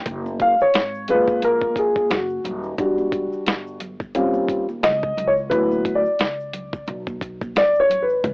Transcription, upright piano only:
0.41 F5
0.62 C#5
1.08 A#2 G#3 F4 B4
1.44 A#4
1.79 G#4
2.13 F#4
2.79 G3 D4 F#4
4.15 G3 C4 C#4 F4
4.83 D#5
5.28 C#5
5.50 F#3 B3 E4 B4
5.95 D5
7.58 D5
7.80 C#5
8.02 B4

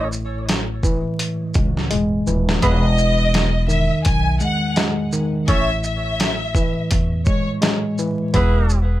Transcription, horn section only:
2.62 B3 E4 G#4 B4
5.48 C#4 A4 C#5
8.34 B3 E4 G#4 B4

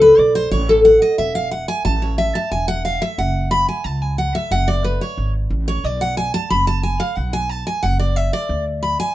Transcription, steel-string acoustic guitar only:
0.01 B4
0.18 D5
0.35 C5
0.51 C#5
0.69 A4
0.85 F#5
1.02 D#5
1.18 E5
1.35 F5
1.51 F#5
1.68 G#5
1.85 A5
2.02 C#5
2.18 E5
2.35 A5
2.52 G#5
2.68 F#5
2.85 F5
3.02 E5
3.18 F#5
3.51 B5
3.69 G#5
3.84 A5
4.02 G#5
4.18 F#5
4.35 E5
4.51 F#5
4.68 D5
4.84 B4
5.01 C#5
5.68 C#5
5.84 D5
6.01 F#5
6.17 G#5
6.34 A5
6.50 B5
6.67 A5
6.83 G#5
7.00 F5
7.16 F#5
7.33 G#5
7.49 A5
7.67 G#5
7.83 F#5
7.99 D5
8.16 E5
8.33 D5
8.83 B5
9.00 G#5

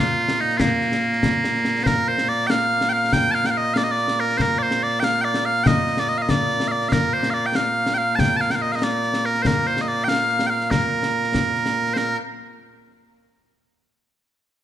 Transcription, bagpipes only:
Already playing: A#2 A#3
0.00 F4
0.40 D#4
0.57 A#3 F4
1.83 A#4 C5
2.08 C5
2.29 D5
2.47 F5 G5
2.89 F5 G5
3.13 G5
3.31 F5 A5
3.46 G5
3.50 F5
3.57 D#5
3.74 D5 F5
3.84 D#5
3.91 D5
4.20 A#4
4.38 C5
4.42 A#4
4.59 D5
4.63 C5
4.83 D5
5.00 G5
5.04 F5
5.21 D5 G5
5.45 F5
5.64 D#5 G5
5.99 D5
6.09 D#5
6.18 F5
6.22 D#5
6.30 D5
6.68 D5 F5
6.89 A#4 F5
7.13 C5
7.30 D5 F5
7.46 G5
7.56 F5
7.94 F5 G5
8.15 A5
8.20 G5
8.36 A5
8.41 F5
8.51 G5
8.55 F5
8.62 D#5
8.72 D#5 F5
8.83 D5
9.26 A#4
9.43 C5
9.47 A#4
9.67 C5
9.81 D#5
9.88 D5
10.04 G5
10.08 F5
10.47 F5 G5
10.71 A#4
11.94 A#4 C5

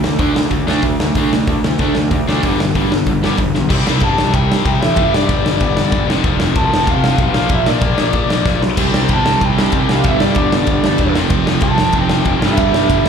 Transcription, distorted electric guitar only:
0.04 D3 A3
0.19 D3 A3 D4
0.35 D3 A3
0.51 D3 A3
0.67 D3 A3 D4
0.84 D3 A3
1.00 D3 A3
1.17 D3 A3 D4
1.33 D3 A3
1.49 D3 A3
1.64 D3 A3
1.79 D3 A3 D4
1.95 D3 A3
2.11 D3 A3
2.28 D3 A3 D4
2.44 G2 D3 G3
2.60 G2 D3
2.75 G2 D3 G3
2.92 G2 D3
3.07 G2 D3
3.23 G2 D3 G3
3.40 G2 D3
3.55 G2 D3
3.69 C3 G3 C4
4.96 G2 D3 G3
6.07 F2 C3 F3
7.33 A#2 F3 A#3
8.77 C3 G3 C4
10.05 G2 D3 G3
11.14 F2 C3 F3
12.40 G2 D3 G3

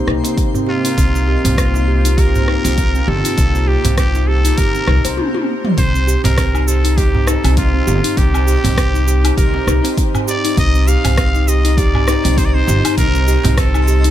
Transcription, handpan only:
0.08 D#4
0.24 C4
0.55 C4
0.68 G4
0.85 D#4
0.97 C4
1.15 C4
1.28 G4
1.45 C4
1.58 C4
1.75 D#4
1.88 G4
2.05 D#4
2.18 G4
2.35 C4
2.48 D#4
2.65 C4
2.78 C4
2.95 C4
3.08 G4
3.25 D#4
3.38 C4
3.55 C4
3.68 G4
3.85 C4
3.98 C4
4.15 D#4
4.28 G4
4.45 D#4
4.58 G4
4.75 C4
4.88 D#4
5.05 C5
5.78 C4
5.94 C4
6.07 G4
6.24 C4
6.37 C4
6.54 D#4
6.67 G4
6.84 D#4
6.97 G4
7.14 C4
7.27 D#4
7.44 C4
7.57 C4
7.74 C4
7.87 G4
8.04 D#4
8.17 C4
8.34 C4
8.47 G4
8.64 C4
8.77 C4
8.94 D#4
9.07 G4
9.24 D#4
9.37 G4
9.54 C4
9.68 D#4
9.84 C4
9.97 C4
10.14 C4
10.28 G4
10.45 D#4
10.58 C4
10.75 C4
10.88 G4
11.05 C4
11.35 D#4
11.48 G4
11.65 D#4
11.78 G4
11.95 C4
12.08 D#4
12.25 C4
12.38 C4
12.55 C4
12.68 G4
12.85 D#4
12.98 C4
13.15 C4
13.28 G4
13.45 C4
13.58 C4
13.75 D#4
13.88 G4
14.05 D#4

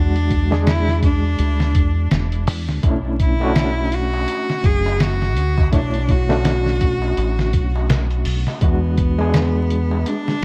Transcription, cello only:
Already playing: D4
0.68 E4
1.04 D4
3.22 E4
3.94 F#4
4.66 G#4
5.02 F#4
5.74 D4
6.10 F#4
8.63 B3
10.08 D4

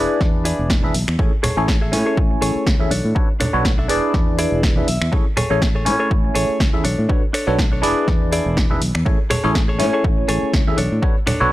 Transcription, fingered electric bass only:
0.21 E2
0.59 E1
0.95 B1
1.08 E2
1.19 A1
1.57 A1
1.93 A2
2.17 A1
2.42 A1
2.56 muted fingered electric bass stroke
2.67 C#2
2.91 B1
3.05 A2
3.54 B1
3.89 E1
4.14 E2
4.52 E1
4.88 B1
5.01 E2
5.12 A1
5.50 A1
5.86 A2
6.11 A1
6.36 A1
6.60 C#2
6.85 B1
6.98 A2
7.47 B1
7.83 E1
8.08 E2
8.46 E1
8.82 B1
8.95 E2
9.06 A1
9.44 A1
9.80 A2
10.04 A1
10.29 A1
10.54 C#2
10.78 B1
10.92 A2
11.41 B1

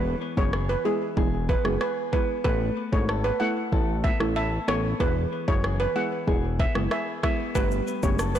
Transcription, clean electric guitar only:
Already playing: E3 B4
0.21 B3
0.53 G#4
0.85 E4
1.17 G#4
1.49 B3
1.81 G#4
2.13 B3
2.45 A3
2.77 B3
3.09 A4
3.41 E4
3.73 A4
4.04 B3
4.36 A4
4.68 B3
5.00 E3
5.32 B3
5.64 G#4
5.96 E4
6.28 G#4
6.60 B3
6.91 G#4
7.23 B3
7.55 G3
7.87 B3
8.19 A4

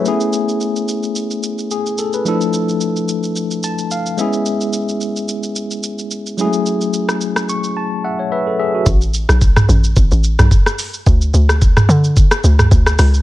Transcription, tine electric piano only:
Already playing: E5
0.04 A3 B3 C#4 E4 G#4
1.71 G#4
1.99 A4
2.14 B4
2.25 F3 A3 D4 E4 A4
3.64 A5
3.91 F5
4.17 G#3 B3 C#4 E4 G#4 E5
6.37 F#3 G#3 C#4 E4 G#4
6.45 A3
7.49 C#6
7.77 A5
8.04 E5 F#5
8.19 C#5
8.32 B4 E5
8.47 A4
8.59 G#4 E5
8.75 F#4

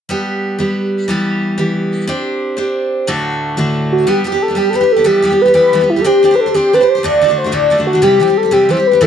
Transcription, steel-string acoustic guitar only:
0.09 G3 B3 D4 G4
0.58 G3 B3 D4 G4
1.08 E3 G3 B3 G4
1.58 E3 G3 B3 G4
2.07 C4 D4 G4 C5
2.57 C4 D4 G4 C5
3.07 D2 A2 D3 A3 D4 F#4
3.57 D2 A2 D3 A3 D4 F#4
4.07 G3 B3 D4 G4
4.24 G3 B3 D4 G4
4.32 B3 D4 G4
4.48 B3 D4 G4
4.55 G3 B3 D4 G4
4.73 G3 B3 D4 G4
4.81 B3 D4 G4
4.96 B3 D4 G4
5.04 E3 G3 B3 G4
5.22 E3 G3 B3 G4
5.30 G3 B3 G4
5.46 G3 B3 G4
5.54 E3 G3 B3 G4
5.73 E3 G3 B3 G4
5.81 G3 B3 G4
5.96 G3 B3 G4
6.04 C4 D4 G4 C5
6.23 C4 D4 G4 C5
6.31 D4 G4 C5
6.46 D4 G4 C5
6.54 C4 D4 G4 C5
6.73 C4 D4 G4 C5
6.81 D4 G4 C5
6.95 D4 G4 C5
7.03 D2 A2 D3 A3 D4 F#4
7.21 D3 A3 D4 F#4
7.28 D3 A3 D4 F#4
7.44 D3 A3 D4 F#4
7.52 D2 A2 D3 A3 D4 F#4
7.70 D3 A3 D4 F#4
7.77 D3 A3 D4 F#4
7.93 D3 A3 D4 F#4
8.02 C3 E3 G3 C4 G4
8.20 E3 G3 C4 G4
8.27 G3 C4 G4
8.43 G3 C4 G4
8.51 C3 E3 G3 C4 G4
8.69 E3 G3 C4 G4
8.77 G3 C4 G4
8.91 G3 C4 G4
9.01 A2 E3 A3 C4 E4

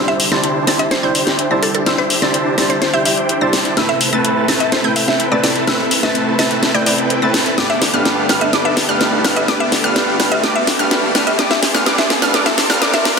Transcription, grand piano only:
0.31 C3 G3 D4 E4 C5
0.67 C3 G3 D4 E4 C5
1.02 C3 G3 D4 E4 C5
1.50 C3 G3 D4 E4 C5
1.86 C3 G3 D4 E4 C5
2.22 C3 G3 D4 E4 C5
2.57 C3 G3 D4 E4 C5
2.93 C3 G3 D4 E4 C5
3.41 C3 G3 D4 E4 C5
3.76 A2 A3 C4 E4 B4
4.12 A2 A3 C4 E4 B4
4.48 A2 A3 C4 E4 B4
4.84 A2 A3 C4 E4 B4
5.31 A2 A3 C4 E4 B4
5.67 A2 A3 C4 E4 B4
6.03 A2 A3 C4 E4 B4
6.38 A2 A3 C4 E4 B4
6.74 A2 A3 C4 E4 B4
7.22 A2 A3 C4 E4 B4
7.57 G2 A3 D4 G4 B4
7.93 G2 A3 D4 G4 B4
8.29 G2 A3 D4 G4 B4
8.53 G2 A3 D4 G4 B4
8.88 G2 A3 D4 G4 B4
9.24 G2 A3 D4 G4 B4
9.48 G2 A3 D4 G4 B4
9.83 G2 A3 D4 G4 B4
10.19 G2 A3 D4 G4 B4
10.43 G2 A3 D4 G4 B4
10.79 G2 A3 D4 G4 B4
11.14 G2 A3 D4 G4 B4
11.38 G2 A3 D4 G4 B4
11.74 G2 A3 D4 G4 B4
11.86 G2 A3 D4 G4 B4
12.21 G2 A3 D4 G4 B4
12.33 G2 A3 D4 G4 B4
12.69 G2 A3 D4 G4 B4
12.81 G2 A3 D4 G4 B4

